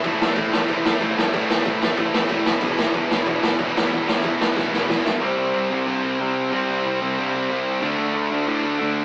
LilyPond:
<<
  \new Staff \with { instrumentName = "Distorted electric guitar" } { \time 4/4 \key c \lydian \tempo 4 = 185 <a, e a c' e'>2~ <a, e a c' e'>8 <a, e a c' e'>8 <a, e a c' e'>4 | <a, e a c' e'>2~ <a, e a c' e'>8 <a, e a c' e'>8 <a, e a c' e'>8 <e g b e'>8~ | <e g b e'>2 <e g b e'>8 <e g b e'>4 <e g b e'>8~ | <e g b e'>2 <e g b e'>8 <e g b e'>4 r8 |
<c g c' e'>2 <c g c' e'>2 | <c g c' e'>2 <c g c' e'>2 | <d fis a d'>2 <d fis a d'>2 | }
  \new Staff \with { instrumentName = "Distorted electric guitar" } { \clef bass \time 4/4 \key c \lydian <a, e a>8 <a, e a>8 <a, e a>8 <a, e a>8 <a, e a>8 <a, e a>8 <a, e a>8 <a, e a>8 | <a, e a>8 <a, e a>8 <a, e a>8 <a, e a>8 <a, e a>8 <a, e a>8 <a, e a>8 <e, b, e>8 | <e, b, e>8 <e, b, e>8 <e, b, e>8 <e, b, e>8 <e, b, e>8 <e, b, e>8 <e, b, e>8 <e, b, e>8 | <e, b, e>8 <e, b, e>8 <e, b, e>8 <e, b, e>8 <e, b, e>8 <e, b, e>8 <e, b, e>8 <e, b, e>8 |
<c g c'>1 | <c g c'>1 | <d a d'>1 | }
  \new Staff \with { instrumentName = "Overdriven electric guitar" } { \clef bass \time 4/4 \key c \lydian <a, e a>8 <a, e a>8 <a, e a>8 <a, e a>8 <a, e a>8 <a, e a>8 <a, e a>8 <a, e a>8 | <a, e a>8 <a, e a>8 <a, e a>8 <a, e a>8 <a, e a>8 <a, e a>8 <a, e a>8 <e, b, e>8 | <e, b, e>8 <e, b, e>8 <e, b, e>8 <e, b, e>8 <e, b, e>8 <e, b, e>8 <e, b, e>8 <e, b, e>8 | <e, b, e>8 <e, b, e>8 <e, b, e>8 <e, b, e>8 <e, b, e>8 <e, b, e>8 <e, b, e>8 <e, b, e>8 |
<c g c'>4. <c g c'>4. <c g c'>4 | <c g c'>4. <c g c'>4. <c g c'>4 | <d a d'>4. <d a d'>4. <d a d'>4 | }
  \new Staff \with { instrumentName = "Picked electric bass" } { \clef bass \time 4/4 \key c \lydian a,,4 a,8 a,,8 a,,8 a,,8 a,,8 g,8 | a,,4 a,8 a,,8 a,,8 a,,8 fis,,8 e,,8 | e,,4 e,8 e,,8 e,,8 e,,8 e,,8 d,8 | e,,4 e,8 e,,8 e,,8 e,,8 e,,8 b,,8 |
c,8 c,8 c,8 c,8 g,8 c,8 c4 | c,8 c,8 c,8 c,8 g,8 c,8 c,4 | d,8 d,8 d,8 d,8 a,8 d,8 d4 | }
  \new DrumStaff \with { instrumentName = "Drums" } \drummode { \time 4/4 <cymc bd>8 sn8 <cymc bd>8 sn8 <cymc bd>8 sn8 <cymc bd>8 sn8 | <cymc bd>8 sn8 <cymc bd>8 sn8 <cymc bd>8 sn8 <cymc bd>8 sn8 | <cymc bd>8 sn8 <cymc bd>8 sn8 <cymc bd>8 sn8 <cymc bd>8 sn8 | <cymc bd>8 sn8 <cymc bd>8 sn8 <bd sn>8 sn8 <bd sn>8 sn8 |
r4 r4 r4 r4 | r4 r4 r4 r4 | r4 r4 r4 r4 | }
>>